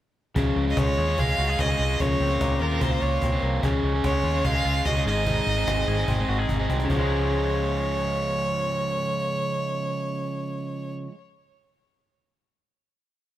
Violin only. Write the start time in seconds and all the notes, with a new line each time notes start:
0.70 D#5
0.79 C#5
1.19 F5
1.60 D#5
2.01 C#5
2.61 A#4
2.81 C5
3.02 C#5
4.06 C#5
4.46 F5
4.86 D#5
5.08 D#5
6.90 C#5